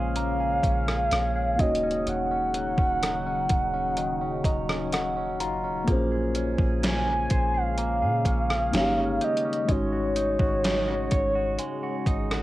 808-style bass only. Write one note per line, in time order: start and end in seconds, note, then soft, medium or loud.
0.00 0.60 A#1 loud
0.63 1.09 A#1 loud
1.12 1.57 A#1 loud
1.59 2.05 D#1 loud
2.07 2.75 D#1 loud
2.78 3.46 D#1 loud
3.50 4.41 D#1 loud
4.44 5.42 D#1 medium
5.40 5.66 F#1 loud
5.64 5.87 D#1 loud
5.88 6.56 A#1 loud
6.58 7.27 A#1 loud
7.31 8.03 A#1 loud
8.02 8.25 A#2 loud
8.25 8.71 A#1 medium
8.73 9.19 G1 loud
9.69 10.37 G#1 loud
10.40 11.08 G#1 loud
11.12 11.57 G#1 loud
12.06 12.43 G#1 medium